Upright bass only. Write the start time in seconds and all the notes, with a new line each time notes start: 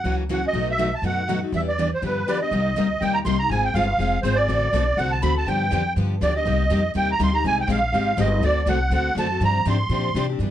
0.04 C#2
0.53 B1
1.02 F#2
1.52 E2
2.02 G2
2.51 C2
2.76 D2
3.01 D#2
3.25 C2
3.49 G#1
3.74 G1
3.99 F1
4.23 G#1
4.48 A1
4.73 B1
4.97 C2
5.22 D2
5.47 G2
5.71 F2
5.96 G2
6.21 D2
6.45 C2
6.70 F2
6.95 D#2
7.19 D2
7.44 C2
7.68 A#1
7.92 G#1
8.17 G1
8.41 D2
8.66 C2
8.90 D2
9.15 F#2
9.40 G2
9.66 G#2
9.89 A#2
10.14 C3
10.39 G2